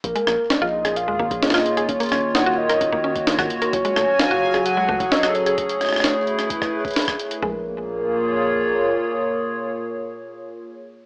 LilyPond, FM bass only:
\new Staff \with { instrumentName = "FM bass" } { \clef bass \time 4/4 \key bes \phrygian \tempo 4 = 130 bes,,16 r16 bes,,16 r8 bes,,4 ees,16 aes,,16 bes,,16 r4 | ees,,16 r16 ees,,16 r8 ees,,8. ees,,16 r4 aes,,16 ees,,16 r16 | ges,,16 r16 ges,,16 r8 ges,,4 ces,16 des,16 ges,,16 r4 | r1 |
bes,,2. r4 | r1 | }